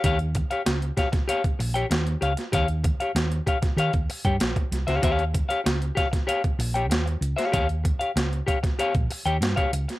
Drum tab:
HH |xxxxxxxxxxoxxxxx|xxxxxxxxxxoxxxxx|xxxxxxxxxxoxxxxx|xxxxxxxxxxoxxxxx|
SD |----o-oo----o--o|----o--o----o-oo|----o-oo----o--o|----o--o----o--o|
BD |o-o---oo-o------|o-o---oo-o-o-o--|o-o---oo-o------|o-o---oo-o---o--|